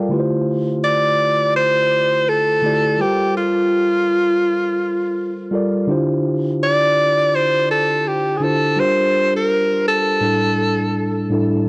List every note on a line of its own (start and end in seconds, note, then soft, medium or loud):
0.00 0.12 G3 medium
0.00 0.11 F4 medium
0.00 0.12 A4 medium
0.00 0.12 A#4 medium
0.00 0.12 D5 loud
0.00 0.12 F5 medium
0.00 0.13 G5 medium
0.00 0.12 A5 medium
0.09 1.05 D3 medium
0.09 1.06 A3 medium
0.09 1.06 E4 medium
0.09 1.07 F4 medium
0.09 1.07 G4 medium
0.09 0.19 B4 medium
0.20 1.11 C5 medium
0.84 1.52 D5 loud
1.56 2.30 C5 loud
2.29 3.02 A4 medium
2.62 2.88 D3 medium
2.62 2.89 A3 medium
2.62 2.89 E4 medium
2.62 2.89 F4 medium
2.62 2.90 G4 medium
2.62 2.90 D5 medium
2.98 3.94 G3 medium
2.98 3.95 F4 medium
2.98 3.36 G4 medium
2.98 3.95 A4 medium
2.98 3.96 A#4 medium
3.02 3.96 C5 medium
3.37 5.49 F4 medium
5.51 5.77 G3 medium
5.51 5.78 F4 medium
5.51 5.78 A4 medium
5.51 5.79 A#4 medium
5.51 5.79 D5 loud
5.87 6.84 D3 medium
5.87 6.84 D4 medium
5.87 6.84 E4 medium
5.87 6.85 F4 medium
5.87 6.85 G4 medium
5.91 6.86 C5 loud
6.63 7.37 D5 loud
7.35 7.70 C5 loud
7.71 8.09 A4 medium
8.08 8.39 G4 medium
8.37 8.66 D3 medium
8.37 8.67 D4 medium
8.37 8.45 G#4 medium
8.42 8.67 E4 medium
8.42 8.67 F4 medium
8.42 8.68 G4 medium
8.42 8.81 A4 medium
8.42 8.68 C5 medium
8.76 9.73 G3 medium
8.76 9.73 D4 medium
8.76 9.74 F4 medium
8.76 9.74 G4 medium
8.76 9.74 A#4 medium
8.76 9.36 C5 loud
8.80 9.75 C5 medium
9.37 9.84 A#4 medium
9.88 11.28 A4 medium
10.21 11.11 A2 medium
10.21 11.11 G3 medium
10.21 11.12 D4 medium
10.21 11.12 E4 medium
10.25 11.13 A4 medium
11.29 11.56 A2 medium
11.29 11.56 G3 medium
11.29 11.57 D4 medium
11.29 11.57 E4 medium
11.29 11.58 A4 loud
11.66 11.69 A2 medium